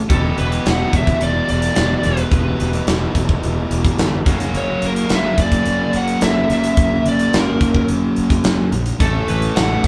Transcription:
Already playing: distorted electric guitar A3 C#4 E4 A4
0.09 fingered electric bass E1, distorted electric guitar E2 B2 E3 G3 B3 E4 G4, lead electric guitar A4, kick, closed hi-hat
0.38 fingered electric bass E1, lead electric guitar B4, closed hi-hat
0.52 closed hi-hat
0.66 fingered electric bass E1, snare, closed hi-hat
0.70 lead electric guitar F#5
0.93 fingered electric bass E1, lead electric guitar E5, kick, closed hi-hat
1.07 kick, closed hi-hat
1.21 fingered electric bass E1, lead electric guitar D5, closed hi-hat
1.49 fingered electric bass E1, lead electric guitar D5, closed hi-hat
1.62 closed hi-hat
1.75 fingered electric bass E1, snare, closed hi-hat
2.03 fingered electric bass E1, lead electric guitar B4, snare, closed hi-hat
2.17 closed hi-hat
2.31 fingered electric bass E1, kick, closed hi-hat
2.60 fingered electric bass E1, closed hi-hat
2.73 closed hi-hat
2.87 fingered electric bass E1, snare, closed hi-hat
3.15 fingered electric bass E1, kick, closed hi-hat
3.29 kick
3.43 fingered electric bass E1, closed hi-hat
3.71 fingered electric bass E1, closed hi-hat
3.85 kick, closed hi-hat
3.98 fingered electric bass G1, snare, closed hi-hat
4.26 fingered electric bass F#1, distorted electric guitar F#2 C#3 F#3 A#3 C#4 F#4, kick, snare, closed hi-hat
4.40 closed hi-hat
4.54 fingered electric bass F#1, lead electric guitar C#5, closed hi-hat
4.82 fingered electric bass F#1, lead electric guitar A#4, closed hi-hat
4.96 closed hi-hat
5.09 fingered electric bass F#1, snare, closed hi-hat
5.15 lead electric guitar E5
5.38 fingered electric bass F#1, lead electric guitar D5, kick, closed hi-hat
5.52 kick, closed hi-hat
5.66 fingered electric bass F#1, closed hi-hat
5.93 fingered electric bass F#1, lead electric guitar F#5, closed hi-hat
6.08 closed hi-hat
6.21 fingered electric bass F#1, lead electric guitar E5, snare, closed hi-hat
6.50 fingered electric bass F#1, lead electric guitar E5, snare, closed hi-hat
6.64 closed hi-hat
6.77 fingered electric bass F#1, kick, closed hi-hat
7.06 fingered electric bass F#1, lead electric guitar D5, closed hi-hat
7.19 closed hi-hat
7.33 fingered electric bass F#1, lead electric guitar A#4, snare, closed hi-hat
7.61 fingered electric bass F#1, kick, closed hi-hat
7.75 kick
7.88 fingered electric bass F#1, closed hi-hat
8.16 fingered electric bass F#1, closed hi-hat
8.30 kick, closed hi-hat
8.44 fingered electric bass F#1, snare, closed hi-hat
8.72 fingered electric bass A#1, closed hi-hat
8.86 closed hi-hat
8.99 fingered electric bass A1, distorted electric guitar A2 E3 A3 C#4 A4, lead electric guitar A4, kick, closed hi-hat
9.28 fingered electric bass A1, lead electric guitar B4, closed hi-hat
9.42 closed hi-hat
9.56 fingered electric bass A1, lead electric guitar F#5, snare, closed hi-hat
9.84 fingered electric bass A1, kick, closed hi-hat

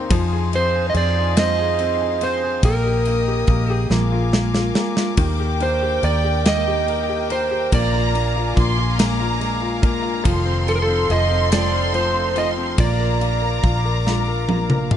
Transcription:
Already playing: upright piano A#3 C4 D#4, steel-string acoustic guitar A#3 D#4 G4
0.10 fingered electric bass F2, steel-string acoustic guitar F3 G#4, upright piano F3, string section D#4 G#4 F5 C6, kick, ride
0.33 upright piano G#4
0.52 upright piano C4, steel-string acoustic guitar D#4, electric slide guitar C5, ride
0.75 upright piano G#4
0.90 electric slide guitar D#5
0.94 fingered electric bass F2, upright piano C4, steel-string acoustic guitar G#4, electric slide guitar D5, ride
1.17 upright piano G#4
1.37 upright piano C4, steel-string acoustic guitar D#4, electric slide guitar D#5, snare, ride
1.59 upright piano G#4
1.79 steel-string acoustic guitar C4, upright piano C4, ride
2.02 upright piano G#4
2.21 upright piano C4, steel-string acoustic guitar D#4, electric slide guitar C5, ride
2.44 upright piano G#4
2.63 fingered electric bass A#1, steel-string acoustic guitar A#3 G4, upright piano A#3, string section A#4 D#5 G5 D#6, electric slide guitar A#4, kick, ride
2.86 upright piano G4
3.05 upright piano A#3, steel-string acoustic guitar D#4, ride
3.28 upright piano G4
3.47 fingered electric bass A#1, upright piano A#3, steel-string acoustic guitar G4, kick, ride
3.70 upright piano G4
3.74 electric slide guitar G#4
3.90 fingered electric bass A#1, steel-string acoustic guitar F3, upright piano A#3, string section A#4 F5 G#5 D6, snare
4.12 upright piano F4
4.32 steel-string acoustic guitar A#3, upright piano A#3, snare
4.54 upright piano F4, snare
4.75 upright piano A#3, steel-string acoustic guitar D4, snare
4.97 upright piano F4, snare
5.17 fingered electric bass D#2, upright piano D#3, steel-string acoustic guitar A#3 G4, violin section G5, string section G5, kick, ride
5.40 upright piano G4
5.60 steel-string acoustic guitar D4, upright piano A#4, electric slide guitar C5, ride
5.82 upright piano G4
6.03 fingered electric bass D#2, steel-string acoustic guitar G4, upright piano A#4, electric slide guitar D5, ride
6.24 upright piano G4
6.45 upright piano A#3, electric slide guitar D#5, snare, ride
6.68 upright piano G4
6.87 steel-string acoustic guitar A#3, upright piano A#4, ride
7.09 upright piano G4
7.30 steel-string acoustic guitar D4, upright piano A#4, electric slide guitar C5, ride
7.51 upright piano G4
7.72 fingered electric bass A#1, steel-string acoustic guitar F3 F4, upright piano A#3, electric slide guitar D5, string section F5 G#5 D6, violin section A#5, kick, ride
7.94 upright piano F4
8.14 upright piano A#3, steel-string acoustic guitar D4, ride
8.36 upright piano F4
8.56 fingered electric bass A#1, upright piano A#3, steel-string acoustic guitar F4, violin section C6, kick, ride
8.78 upright piano F4
8.98 upright piano A#3, steel-string acoustic guitar D4, violin section A#5, snare, ride
9.20 upright piano F4
9.40 steel-string acoustic guitar G#3, upright piano A#3, ride
9.62 upright piano F4
9.82 upright piano A#3, steel-string acoustic guitar D4, violin section A#5, kick, ride
10.02 upright piano F4
10.24 fingered electric bass F1, steel-string acoustic guitar D#3 F4, upright piano F3, string section D#4 A4 C6, violin section C6, kick, ride
10.45 upright piano C4
10.67 upright piano F3, steel-string acoustic guitar C4, electric slide guitar A4, ride
10.76 electric slide guitar A#4
10.82 electric slide guitar A4
10.87 upright piano C4
11.09 fingered electric bass F1, upright piano F3, steel-string acoustic guitar F4, electric slide guitar D#5, ride
11.31 upright piano C4
11.51 upright piano F3, steel-string acoustic guitar C4, electric slide guitar D5, snare, ride
11.72 upright piano C4
11.93 upright piano F3, steel-string acoustic guitar A3, electric slide guitar C5, ride
12.14 upright piano C4
12.35 upright piano F3, steel-string acoustic guitar C4, electric slide guitar D#5, ride
12.57 upright piano C4
12.78 fingered electric bass A#1, steel-string acoustic guitar F3 F4, upright piano A#3, string section A#4 D5 D6, electric slide guitar D5, violin section A#5, kick, ride
13.00 upright piano A#4
13.20 steel-string acoustic guitar D4, upright piano F4, ride
13.42 upright piano A#4
13.63 fingered electric bass A#1, steel-string acoustic guitar F4, upright piano F4, kick, ride
13.85 upright piano A#4
14.06 steel-string acoustic guitar D4, upright piano F4, snare
14.28 upright piano A#4
14.49 steel-string acoustic guitar A#3, upright piano F4, high tom
14.70 upright piano A#4, mid tom
14.91 steel-string acoustic guitar D4, upright piano F4, violin section F5, mid tom

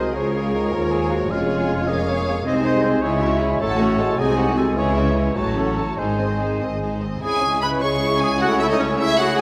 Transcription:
Already playing: double bass section C2, cello section C2, bassoon F#3, french horn section G#3 F#4, viola section G#4, clarinet A#4, violin section C5 D#5, flute section D#5
0.13 double bass section C#2, cello section C#2, bassoon F3, french horn section G#3 F4, clarinet G#4, violin section A#4 C#5, oboe C#5, flute section F5
0.34 bassoon C#3
0.54 bassoon D#3
0.73 double bass section D#2, cello section D#2, bassoon F3, clarinet F4, viola section A#4, flute section A#5
0.91 viola section G#4, flute section G#5
1.09 viola section F#4, flute section F5
1.29 double bass section F1, cello section F2, bassoon G#3, french horn section C#4, viola section F4, violin section G#4 C#5, flute section C#5, oboe F5
1.88 bassoon A#3, viola section G#4, clarinet G#4, violin section C#5 F5, oboe D#5
2.08 oboe C#5
2.28 oboe C#5
2.45 double bass section C2, cello section C3, french horn section G#3 D#4, bassoon G#3, viola section C4, violin section G#4 C5, oboe D#5, flute section D#5
2.64 viola section D#4, violin section C5 D#5, oboe C5
2.84 viola section C4, violin section G#4 C5, oboe C5
3.02 double bass section C#2, cello section C#3, bassoon G#3, viola section E4, french horn section E4, violin section G#4 C#5, clarinet G#4, oboe C#5, flute section E5
3.22 viola section C#4, violin section E4 E5, clarinet F#4
3.40 clarinet E4, viola section E4, violin section G#4 C#5
3.60 double bass section A1, cello section A2, bassoon F#3, viola section A3, french horn section A3 F#4, clarinet A4, violin section A4 A5, oboe C#5, flute section F#5
3.79 bassoon A3, viola section C#4, violin section F#4 F#5
3.98 bassoon G#3, viola section A3, violin section A4 A5
4.17 double bass section C2, cello section C3, bassoon F#3, french horn section G#3, viola section C4, violin section G#4 G#5, clarinet G#4, oboe D#5, flute section G#5
4.37 viola section D#4, clarinet F#4, violin section F#4 F#5
4.57 viola section C4, violin section G#4 G#5, clarinet A4
4.75 double bass section C#2, cello section C#3, bassoon E3, french horn section E4, viola section E4, violin section G#4 C#5, clarinet G#4, oboe C#5, flute section G#5
4.94 viola section C#4, violin section E4 E5
5.14 viola section E4, violin section G#4 C#5
5.35 double bass section A1, cello section A2, bassoon F#3, french horn section F#3 C#4, viola section A3, clarinet F#4, violin section F#4 A5, oboe C#5, flute section A5
5.56 viola section C#4, clarinet A4, violin section A4 F#5
5.76 viola section A3, violin section F#4 A5, clarinet A4
5.97 double bass section G#1, cello section G#2, french horn section D#3 C4, bassoon G#3, viola section D#4, violin section G#4 C5, clarinet G#4, oboe C5, flute section G#5
6.19 viola section C4, violin section C5 D#5
6.40 viola section D#4, violin section G#4 C5
6.60 double bass section G#1, cello section G#2, viola section C4, violin section C5 D#5
6.82 viola section D#4, violin section G#4 C5
7.01 viola section C4, violin section C5 D#5
7.22 double bass section C#2, cello section C#3, french horn section G#3 E4, violin section C#4 E4 G#5, oboe G#4, clarinet G#4, trumpet section C#5, flute section G#5
7.42 violin section G#3 C#4
7.61 violin section C#4 E4 B5, oboe B4, flute section B5
7.65 clarinet B4
7.80 violin section G#3 C#4 C#6, viola section G#4, oboe C#5, clarinet C#5, flute section C#6
8.02 violin section C#4 E4
8.18 violin section G#3 C#4 G#5, flute section G#5
8.23 clarinet G#4, oboe G#4
8.39 french horn section A3, violin section C#4 E4 F#5, oboe F#4, viola section A4, flute section F#5
8.43 clarinet F#4
8.59 violin section A3 C#4 E5, oboe E4, clarinet E4, flute section E5
8.69 oboe D#4, clarinet D#4, violin section D#5, flute section D#5
8.78 oboe C#4, violin section C#4 E4 C#5, clarinet C#4, flute section C#5
8.98 violin section A3 C#4 E5, clarinet E4, oboe E4, viola section G#4, flute section E5
9.18 violin section C#4 E4 F#5, clarinet F#4, oboe F#4, flute section F#5
9.38 clarinet G#4, flute section G#5

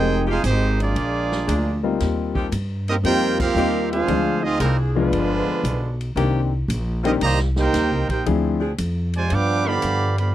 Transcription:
Already playing: upright bass F1, grand piano F3 G#3 C4 D#4 G4, trombone section C4 D#4 A#4, trumpet section D#4 G#4 C5 G5
0.25 saxophone section F3 G#3 D#4 G4, trombone section G#3 C4
0.30 trumpet section D#4 G#4 C5 F5, trombone section F4
0.44 upright bass G#1, trombone section D#3 G#3 C4, trumpet section G#3 D#4 G4 C5, hi-hat pedal, ride
0.80 trombone section F3 G#3 D4, trumpet section A#3 F4 G#4 D5, ride
0.96 upright bass A#1, ride
1.32 snare
1.47 upright bass D2, saxophone section F3 A#3 D4 G#4, hi-hat pedal, ride
1.83 grand piano G3 A#3 C4 D#4 F4
2.00 upright bass D#2, snare, ride
2.34 saxophone section F3 C4 D#4 G4, kick
2.52 upright bass G2, hi-hat pedal, ride
2.88 trombone section A#3 C4 D#4, trumpet section C4 G4 A#4 D#5, ride
3.04 upright bass F2, grand piano G3 A#3 C4 D#4 F4, trombone section A#3 C4 G4, trumpet section F4 A#4 C5 G5, ride
3.40 trombone section A#3 C4 F4, trumpet section C4 G4 A#4 F5, kick, crash
3.55 upright bass D#2, saxophone section F3 C4 D#4 G4, grand piano G3 A#3 C4 D#4 F4, hi-hat pedal
3.91 trombone section G#3 C4 F4, trumpet section D4 G#4 C5 F5, ride
4.08 upright bass D2, grand piano F3 G#3 C4 D4 F4, ride
4.44 trumpet section C4 F4 G#4 D#5, trombone section D#4
4.59 upright bass C2, saxophone section F3 D4 G#4, trumpet section G3 C4 D#4 A#4, trombone section A#3, hi-hat pedal, ride
4.95 trombone section D3 F3 B3, grand piano F3 G#3 B3 D4 F4, trumpet section G#3 D4 F4 B4
5.12 upright bass G1, ride
5.47 muted upright bass stroke
5.64 upright bass B1, hi-hat pedal, ride
6.01 ride
6.16 upright bass C2, saxophone section D#3 A#3 C4 G4, grand piano D#3 A#3 C4 D4 G4, ride
6.68 upright bass A#1, hi-hat pedal, ride
7.03 saxophone section D#3 A#3 C4 F4, grand piano D#3 A#3 C4 D4 G4, trombone section G3 A#3 D#4, trumpet section C4 G4 A#4 D#5, ride
7.21 upright bass C2, trombone section D#3 G3 A#3, trumpet section G4 C5 D#5 A#5, ride
7.38 snare
7.56 trombone section A#3 D#4 G4, trumpet section D#4 A#4 C5 G5, snare
7.74 upright bass D#2, snare, hi-hat pedal, ride
7.91 upright bass C2
8.09 upright bass A#1, trombone section A#3 D#4 G4, trumpet section D#4 A#4 C5 G5, kick, ride
8.26 upright bass D2, grand piano F3 C4 D4 E4 G#4, ride
8.60 saxophone section F3 C4 D4 G#4
8.78 upright bass F2, hi-hat pedal, ride
9.14 trombone section C3 F3 G#3, trumpet section F4 C5 D5 G#5, ride
9.30 upright bass G2, trombone section F3 B3 D4, trumpet section B4 F5 G5 D6, ride
9.64 trombone section D3 F3 B3, saxophone section F3 B3 D#4 G4, trumpet section D5 F5 B5
9.68 trumpet section G4
9.82 upright bass G2, hi-hat pedal, ride
10.18 trombone section D3 F3 B3, trumpet section G4 D5 F5 B5, ride

